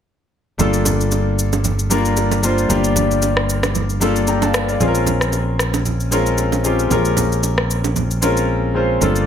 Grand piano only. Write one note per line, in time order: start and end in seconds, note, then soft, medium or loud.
0.58 1.43 G3 medium
0.58 1.44 A#3 medium
0.58 1.44 D4 medium
0.58 1.44 F4 medium
0.58 1.45 A4 medium
1.90 2.33 G3 medium
1.90 2.34 A#3 medium
1.90 2.34 D4 medium
1.90 2.34 F4 medium
1.90 2.35 A#4 medium
2.42 2.65 G3 medium
2.42 2.65 A#3 medium
2.42 2.65 D4 medium
2.42 2.65 F4 medium
2.42 2.66 C5 medium
2.69 3.54 G3 medium
2.69 3.54 A#3 medium
2.69 3.55 D4 medium
2.69 3.55 F4 medium
2.69 3.55 G4 medium
4.00 4.44 G3 medium
4.00 4.44 A#3 medium
4.00 4.45 D4 medium
4.00 4.45 F4 medium
4.00 4.45 A4 medium
4.28 4.42 G5 medium
4.28 4.42 A#5 medium
4.42 4.67 F5 medium
4.42 4.67 A5 medium
4.68 4.94 D5 medium
4.68 4.94 F5 medium
4.79 5.65 G#3 medium
4.79 5.65 C4 medium
4.79 5.65 C#4 medium
4.79 5.65 F4 medium
4.79 4.88 G#4 medium
4.88 5.69 A#4 medium
6.11 6.55 G#3 medium
6.11 6.55 C4 medium
6.11 6.55 C#4 medium
6.11 6.55 F4 medium
6.11 6.56 A#4 medium
6.63 6.86 G#3 medium
6.63 6.86 C4 medium
6.63 6.86 C#4 medium
6.63 6.87 F4 medium
6.63 6.87 G4 medium
6.90 7.75 G#3 medium
6.90 7.75 C4 medium
6.90 7.76 C#4 medium
6.90 7.76 F4 medium
6.90 7.76 A#4 medium
8.21 8.65 G#3 medium
8.21 8.65 C4 medium
8.21 8.66 C#4 medium
8.21 8.66 F4 medium
8.21 8.66 A#4 medium
8.74 8.96 G#3 medium
8.74 8.96 C4 medium
8.74 8.97 C#4 medium
8.74 8.97 F4 medium
8.74 8.97 C5 medium
9.00 9.26 G3 medium
9.00 9.26 A#3 medium
9.00 9.26 D4 medium
9.00 9.26 F4 medium
9.00 9.26 A4 medium